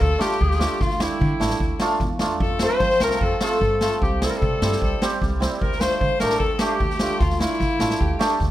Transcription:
0.00 0.13 D2 loud
0.00 0.23 A4 medium
0.00 0.23 A4 loud
0.00 kick medium
0.18 0.30 A3 medium
0.18 0.30 D4 medium
0.18 0.30 F4 loud
0.18 0.84 G4 medium
0.18 0.84 G4 loud
0.18 snare medium
0.31 snare soft
0.41 0.65 D2 loud
0.41 kick medium
0.51 snare soft
0.59 0.71 A3 medium
0.59 0.71 D4 medium
0.59 0.70 F4 medium
0.59 snare loud
0.81 1.05 D2 loud
0.81 1.03 F4 medium
0.81 1.05 F4 medium
0.81 kick loud
0.81 snare soft
0.90 snare soft
1.00 1.11 A3 medium
1.00 1.11 D4 medium
1.00 1.82 E4 loud
1.00 1.83 E4 medium
1.00 1.11 G4 medium
1.00 snare loud
1.21 1.33 D3 loud
1.21 kick medium
1.40 1.53 A1 medium
1.40 1.51 A3 medium
1.40 1.51 D4 medium
1.40 1.51 E4 medium
1.40 snare medium
1.50 snare medium
1.60 1.73 D2 medium
1.60 kick medium
1.80 1.91 A3 loud
1.80 1.92 D4 medium
1.80 1.91 F4 loud
1.80 snare loud
1.91 snare soft
2.00 2.25 E2 loud
2.00 kick medium
2.00 snare soft
2.19 2.31 A3 medium
2.19 2.31 D4 medium
2.19 2.31 F4 medium
2.19 snare medium
2.40 2.65 F2 loud
2.40 2.64 A4 medium
2.40 2.60 A4 medium
2.40 kick medium
2.59 2.71 A3 medium
2.59 2.72 C4 medium
2.59 2.72 F4 medium
2.59 2.81 C5 medium
2.59 snare loud
2.64 3.00 C5 loud
2.79 2.93 F3 loud
2.79 3.03 C5 loud
2.79 kick medium
2.79 snare soft
2.90 snare soft
3.00 3.13 C2 medium
3.00 3.12 A3 medium
3.00 3.12 C4 medium
3.00 3.12 F4 medium
3.00 3.24 A#4 medium
3.00 3.25 A#4 loud
3.00 snare medium
3.11 snare medium
3.21 3.33 F2 medium
3.21 3.42 A4 medium
3.21 3.42 A4 loud
3.21 kick medium
3.41 3.52 A3 medium
3.41 3.52 C4 medium
3.41 3.52 F4 loud
3.41 4.05 A4 loud
3.41 3.80 A4 medium
3.41 snare loud
3.52 snare soft
3.61 3.85 G2 medium
3.61 kick medium
3.81 3.92 A3 medium
3.81 3.92 C4 medium
3.81 3.92 F4 medium
3.81 4.00 A4 medium
3.81 snare medium
4.02 4.26 C2 loud
4.02 4.25 G4 medium
4.02 4.21 G4 medium
4.02 kick medium
4.21 4.61 G3 medium
4.21 4.33 C4 medium
4.21 4.33 E4 medium
4.21 4.32 A4 medium
4.21 4.36 A4 medium
4.21 snare loud
4.30 4.38 A#4 medium
4.30 snare soft
4.36 5.02 A4 loud
4.36 4.79 A4 medium
4.42 4.54 C3 loud
4.42 kick medium
4.62 4.74 G2 medium
4.62 5.01 G3 medium
4.62 4.72 C4 medium
4.62 4.72 E4 medium
4.62 snare medium
4.72 snare medium
4.82 4.94 C2 loud
4.82 5.02 A4 medium
4.82 kick medium
5.02 5.39 G3 loud
5.02 5.12 C4 medium
5.02 5.12 G4 loud
5.02 snare loud
5.22 5.46 C2 loud
5.22 kick medium
5.22 snare soft
5.40 5.67 G3 medium
5.40 5.51 C4 medium
5.40 5.51 E4 medium
5.40 snare medium
5.53 snare soft
5.61 5.86 D2 loud
5.61 5.82 A#4 loud
5.61 5.83 A#4 medium
5.61 kick medium
5.72 snare soft
5.80 5.91 A3 medium
5.80 5.91 D4 medium
5.80 5.91 F4 medium
5.80 6.20 C5 loud
5.80 6.01 C5 loud
5.80 snare loud
5.91 snare soft
6.01 6.13 D3 loud
6.01 6.22 C5 loud
6.01 kick medium
6.20 6.35 A1 medium
6.20 6.31 A3 medium
6.20 6.32 D4 medium
6.20 6.31 G4 medium
6.20 6.39 A#4 loud
6.20 6.41 A#4 loud
6.20 snare medium
6.30 snare medium
6.37 6.53 D2 medium
6.37 6.53 A4 loud
6.37 6.64 A4 medium
6.37 kick medium
6.55 6.61 A4 medium
6.59 6.71 A3 medium
6.59 6.71 D4 medium
6.59 7.20 G4 loud
6.59 6.72 G4 loud
6.59 6.71 G4 medium
6.59 snare loud
6.69 6.77 F4 medium
6.76 7.02 G4 medium
6.80 7.05 D2 loud
6.80 kick medium
6.90 snare soft
6.99 7.11 A3 medium
6.99 7.11 D4 medium
6.99 7.12 F4 medium
6.99 7.24 G4 medium
6.99 snare medium
7.18 7.45 D2 loud
7.18 7.41 F4 medium
7.18 kick loud
7.18 snare soft
7.30 snare soft
7.40 7.51 A3 medium
7.40 7.51 D4 medium
7.40 8.21 E4 loud
7.40 8.02 E4 medium
7.40 7.51 F4 medium
7.40 snare medium
7.51 snare soft
7.60 7.73 D3 loud
7.60 kick medium
7.60 snare soft
7.79 7.92 A1 loud
7.79 7.91 A3 medium
7.79 7.91 D4 medium
7.79 7.91 F4 medium
7.79 snare medium
7.90 snare medium
8.01 8.13 D2 medium
8.01 8.21 G4 medium
8.01 kick medium
8.19 8.30 A3 loud
8.19 8.31 D4 medium
8.19 8.31 G4 loud
8.19 snare loud
8.31 snare soft
8.40 8.51 D2 loud
8.40 kick medium
8.40 snare soft

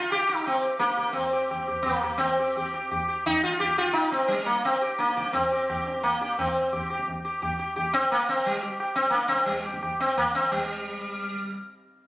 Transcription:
0.00 0.11 F4 medium
0.10 0.29 G4 medium
0.10 tabla na medium
0.29 0.46 D#4 medium
0.45 0.62 C4 medium
0.45 tabla na medium
0.63 0.78 G4 soft
0.79 1.12 A#3 medium
0.79 0.96 G4 soft
0.79 tabla te medium
0.89 tabla te medium
0.97 1.14 G4 soft
0.97 tabla ke medium
1.08 tabla te medium
1.13 1.82 C4 medium
1.13 tabla tin medium
1.13 tabla ge medium
1.33 1.49 G4 soft
1.51 1.66 G4 soft
1.51 tabla na medium
1.51 tabla ge medium
1.68 1.84 G4 soft
1.68 tabla ge soft
1.83 2.17 A#3 medium
1.83 2.02 G4 soft
1.83 tabla na medium
1.83 tabla ge medium
2.04 2.20 G4 soft
2.04 tabla ge soft
2.18 2.68 C4 medium
2.18 tabla na loud
2.18 tabla ge medium
2.39 2.55 G4 soft
2.56 2.73 G4 soft
2.56 tabla tin medium
2.56 tabla ge medium
2.74 2.90 G4 soft
2.74 tabla na medium
2.91 3.07 G4 soft
2.91 tabla tin medium
2.91 tabla ge medium
3.08 3.24 G4 soft
3.26 3.43 D#4 loud
3.26 tabla na medium
3.26 tabla ge medium
3.43 3.59 F4 medium
3.43 tabla ge medium
3.60 3.78 G4 loud
3.60 tabla tin medium
3.60 tabla ge medium
3.78 3.96 F4 loud
3.78 tabla na medium
3.93 4.11 D#4 loud
3.93 tabla na medium
4.12 4.30 C4 medium
4.28 4.47 G3 medium
4.28 tabla te medium
4.46 4.65 A#3 medium
4.46 tabla te medium
4.65 4.81 C4 medium
4.65 tabla na medium
4.81 4.98 G4 soft
4.98 5.33 A#3 medium
4.98 tabla te medium
5.08 tabla te medium
5.16 5.33 G4 soft
5.16 tabla ke medium
5.26 tabla te medium
5.33 6.03 C4 medium
5.33 tabla tin medium
5.33 tabla ge medium
5.52 5.68 G4 soft
5.69 5.84 G4 soft
5.69 tabla na medium
5.69 tabla ge medium
5.85 6.02 G4 soft
5.85 tabla te medium
6.03 6.38 A#3 medium
6.03 tabla na medium
6.03 tabla ge medium
6.21 6.37 G4 soft
6.21 tabla te medium
6.39 6.87 C4 medium
6.39 tabla na loud
6.39 tabla ge medium
6.73 6.89 G4 soft
6.73 tabla tin medium
6.73 tabla ge medium
6.90 7.06 G4 soft
6.90 tabla na medium
6.99 tabla ke medium
7.08 tabla tin medium
7.08 tabla ge medium
7.25 7.41 G4 soft
7.42 7.58 G4 soft
7.42 tabla na medium
7.42 tabla ge medium
7.59 7.75 G4 soft
7.76 7.92 G4 soft
7.76 tabla tin medium
7.76 tabla ge medium
7.93 8.11 C4 loud
7.93 tabla na medium
8.12 8.28 A#3 loud
8.12 tabla na medium
8.29 8.46 C4 loud
8.46 8.62 G3 medium
8.46 tabla na medium
8.63 8.79 G4 soft
8.80 8.96 G4 soft
8.80 tabla na medium
8.96 9.10 C4 loud
9.10 9.28 A#3 loud
9.10 tabla te medium
9.23 tabla te medium
9.28 9.47 C4 loud
9.28 tabla ke medium
9.40 tabla te medium
9.46 9.63 G3 medium
9.46 tabla tin medium
9.46 tabla ge medium
9.65 9.81 G4 soft
9.65 tabla na medium
9.74 tabla ke medium
9.82 9.98 G4 soft
9.82 tabla na medium
9.82 tabla ge medium
10.00 10.17 C4 loud
10.00 tabla te medium
10.18 10.34 A#3 loud
10.18 tabla na medium
10.18 tabla ge medium
10.35 10.52 C4 loud
10.35 tabla ge medium
10.52 11.50 G3 medium
10.52 tabla na loud
10.52 tabla ge loud

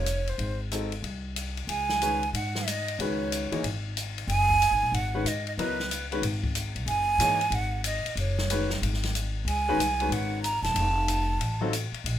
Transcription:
0.00 0.36 F1 medium
0.00 0.31 C#5 medium
0.06 hi-hat pedal soft
0.06 ride medium
0.27 0.61 C5 medium
0.27 ride soft
0.38 1.00 G#1 medium
0.38 ride medium
0.72 0.90 G#3 medium
0.72 0.90 C4 medium
0.72 0.90 D#4 medium
0.72 0.90 F#4 medium
0.72 0.90 A4 medium
0.72 hi-hat pedal medium
0.72 ride medium
0.92 ride soft
1.02 1.65 C2 medium
1.02 ride soft
1.36 hi-hat pedal medium
1.36 ride medium
1.57 ride soft
1.67 2.29 C#2 medium
1.67 2.29 G#5 loud
1.67 ride medium
1.89 snare soft
2.02 2.20 D#3 medium
2.02 2.20 G#3 medium
2.02 2.20 C#4 medium
2.02 2.20 F#4 medium
2.02 2.20 B4 medium
2.02 hi-hat pedal medium
2.02 ride medium
2.23 ride soft
2.33 2.95 G#2 medium
2.33 2.69 F#5 medium
2.33 ride medium
2.55 snare medium
2.67 3.01 D#5 medium
2.67 hi-hat pedal medium
2.67 ride medium
2.88 ride soft
2.99 3.48 C#2 medium
2.99 3.48 D#3 medium
2.99 3.48 G#3 medium
2.99 3.48 C#4 medium
2.99 3.48 F#4 medium
2.99 3.49 B4 medium
2.99 3.64 C#5 medium
2.99 ride medium
3.32 hi-hat pedal medium
3.32 ride medium
3.52 3.62 E3 medium
3.52 3.62 A#3 medium
3.52 3.62 D#4 medium
3.52 3.62 G#4 medium
3.52 3.62 C#5 medium
3.52 muted upright bass stroke soft
3.52 ride soft
3.63 4.25 G#1 medium
3.63 ride medium
3.97 hi-hat pedal medium
3.97 ride medium
4.18 ride soft
4.27 4.68 F#1 medium
4.27 4.96 G#5 loud
4.27 ride medium
4.50 kick medium
4.62 hi-hat pedal medium
4.62 ride medium
4.71 4.81 G#1 medium
4.83 4.91 B1 medium
4.92 5.22 G#1 medium
4.92 5.28 F#5 loud
4.92 ride medium
5.14 5.24 D#3 medium
5.14 5.24 G#3 medium
5.14 5.24 C#4 medium
5.14 5.25 F#4 medium
5.14 5.25 B4 medium
5.24 5.55 G#2 medium
5.24 5.47 D#5 medium
5.24 hi-hat pedal medium
5.24 ride medium
5.47 5.53 D#5 medium
5.47 ride soft
5.58 6.19 C#2 medium
5.58 5.77 F#3 medium
5.58 5.77 B3 medium
5.58 5.77 E4 medium
5.58 5.77 A#4 medium
5.58 6.07 B4 medium
5.58 5.77 D#5 medium
5.58 ride medium
5.80 snare soft
5.91 hi-hat pedal medium
5.91 ride medium
6.12 6.22 D#3 medium
6.12 6.22 G#3 medium
6.12 6.22 C#4 medium
6.12 6.22 F#4 medium
6.12 6.22 B4 medium
6.12 ride soft
6.22 6.71 G#1 medium
6.22 ride medium
6.44 kick medium
6.55 hi-hat pedal medium
6.55 ride medium
6.75 6.85 B1 medium
6.75 ride soft
6.86 7.16 F#1 medium
6.86 7.56 G#5 loud
6.86 ride medium
7.18 7.49 G#2 medium
7.18 7.38 E3 medium
7.18 7.38 A#3 medium
7.18 7.38 D#4 medium
7.18 7.38 G#4 medium
7.18 7.39 C#5 medium
7.18 hi-hat pedal medium
7.18 ride medium
7.41 ride soft
7.50 8.00 G#1 medium
7.50 ride medium
7.55 7.85 F#5 medium
7.84 8.15 D#5 medium
7.84 hi-hat pedal medium
7.84 ride medium
8.05 muted upright bass stroke soft
8.05 ride soft
8.15 8.77 F#1 medium
8.15 8.78 C#5 medium
8.15 ride medium
8.38 snare medium
8.50 8.68 D#3 medium
8.50 8.68 G#3 medium
8.50 8.68 C#4 medium
8.50 8.68 F#4 medium
8.50 8.69 B4 medium
8.50 hi-hat pedal medium
8.50 ride medium
8.70 snare medium
8.82 9.43 G#1 medium
8.82 ride medium
8.94 snare soft
9.03 snare soft
9.03 ride medium
9.15 hi-hat pedal medium
9.15 ride medium
9.45 9.75 C#2 medium
9.45 10.14 G#5 loud
9.45 ride medium
9.69 9.78 D#3 medium
9.69 9.78 G#3 medium
9.69 9.78 C#4 medium
9.69 9.78 F#4 medium
9.69 9.78 B4 loud
9.77 10.08 C2 medium
9.77 hi-hat pedal medium
9.77 ride medium
10.00 10.41 D#3 medium
10.00 10.42 G#3 medium
10.00 10.42 C#4 medium
10.00 10.41 F#4 medium
10.00 10.42 B4 medium
10.00 ride soft
10.09 10.59 G#1 medium
10.09 10.43 F#5 medium
10.09 ride medium
10.43 10.62 A#5 loud
10.43 hi-hat pedal medium
10.43 ride medium
10.62 10.74 E1 medium
10.62 11.68 A5 loud
10.62 snare soft
10.62 ride soft
10.74 11.36 F1 medium
10.74 ride medium
11.08 hi-hat pedal medium
11.08 ride medium
11.39 11.89 A1 medium
11.39 ride medium
11.61 11.71 F#3 medium
11.61 11.71 C4 medium
11.61 11.71 D#4 medium
11.61 11.71 F4 medium
11.61 11.71 A4 medium
11.73 hi-hat pedal medium
11.73 ride medium
11.92 muted upright bass stroke soft
11.92 ride soft
12.04 12.19 A#1 medium
12.04 ride medium

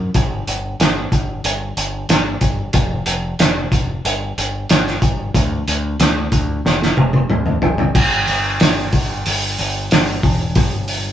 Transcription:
0.14 0.42 G1 medium
0.14 kick loud
0.14 closed hi-hat medium
0.47 0.74 G1 medium
0.47 closed hi-hat medium
0.80 1.07 G1 medium
0.80 snare loud
0.80 closed hi-hat medium
1.12 1.39 G1 medium
1.12 kick medium
1.12 closed hi-hat medium
1.44 1.72 G1 medium
1.44 closed hi-hat medium
1.77 2.04 G1 medium
1.77 closed hi-hat medium
2.09 2.36 G1 medium
2.09 snare loud
2.09 closed hi-hat medium
2.41 2.69 G1 medium
2.41 kick medium
2.41 closed hi-hat medium
2.73 3.01 F1 loud
2.73 kick loud
2.73 closed hi-hat medium
3.06 3.34 F1 medium
3.06 closed hi-hat medium
3.39 3.67 F1 medium
3.39 snare loud
3.39 closed hi-hat loud
3.72 3.99 F1 medium
3.72 kick medium
3.72 closed hi-hat medium
4.05 4.32 G1 medium
4.05 closed hi-hat medium
4.38 4.65 G1 medium
4.38 closed hi-hat medium
4.69 4.97 G1 medium
4.69 snare loud
4.69 closed hi-hat medium
4.87 snare soft
5.02 5.29 G1 medium
5.02 kick medium
5.02 closed hi-hat medium
5.34 5.62 D2 loud
5.34 kick loud
5.34 closed hi-hat medium
5.68 5.95 D2 medium
5.68 closed hi-hat medium
6.00 6.27 D2 loud
6.00 snare loud
6.00 closed hi-hat medium
6.32 6.59 D2 medium
6.32 kick medium
6.32 closed hi-hat medium
6.65 6.92 F1 medium
6.65 snare medium
6.83 snare medium
6.97 7.25 F1 medium
6.97 high tom medium
7.13 high tom medium
7.30 7.58 D2 medium
7.30 mid tom medium
7.46 mid tom medium
7.62 7.90 F#1 medium
7.62 floor tom medium
7.78 floor tom medium
7.95 8.25 G1 loud
7.95 kick loud
7.95 crash loud
8.27 8.58 G1 medium
8.27 open hi-hat medium
8.60 8.90 G1 medium
8.60 snare loud
8.60 open hi-hat medium
8.93 9.23 G1 medium
8.93 kick medium
8.93 open hi-hat medium
9.26 9.56 G1 medium
9.26 open hi-hat medium
9.59 9.88 G1 medium
9.59 open hi-hat medium
9.91 10.21 G1 medium
9.91 snare loud
9.91 open hi-hat medium
10.23 10.53 E1 medium
10.23 kick medium
10.23 open hi-hat medium
10.55 11.12 G1 medium
10.55 kick loud
10.55 open hi-hat medium
10.88 open hi-hat medium

